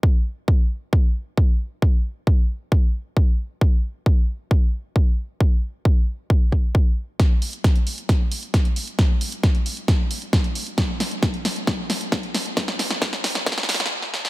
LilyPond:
\new DrumStaff \with { instrumentName = "Drums" } \drummode { \time 4/4 \tempo 4 = 134 bd4 bd4 bd4 bd4 | bd4 bd4 bd4 bd4 | bd4 bd4 bd4 bd4 | bd4 bd4 bd8 bd8 bd4 |
<hh bd sn>8 hho16 hh16 <hh bd sn>16 hh16 hho16 hh16 <hh bd sn>8 hho16 hh16 <hh bd sn>16 hh16 hho16 hh16 | <hh bd sn>8 hho16 hh16 <hh bd sn>16 hh16 hho16 hh16 <hh bd sn>8 hho16 hh16 <hh bd sn>16 hh16 hho16 hh16 | <hh bd sn>8 <hho sn>16 hh16 <hh bd sn>16 hh16 <hho sn>16 hh16 <hh bd sn>8 <hho sn>16 hh16 <hh bd sn>16 hh16 <hho sn>16 hh16 | <hh bd sn>16 sn16 <hho sn>16 <hh sn>16 <hh bd sn>16 <hh sn>16 <hho sn>16 <hh sn>16 <hh bd sn>32 sn32 sn32 sn32 <hho sn>32 sn32 <hh sn>32 sn32 r16 sn16 sn16 sn16 | }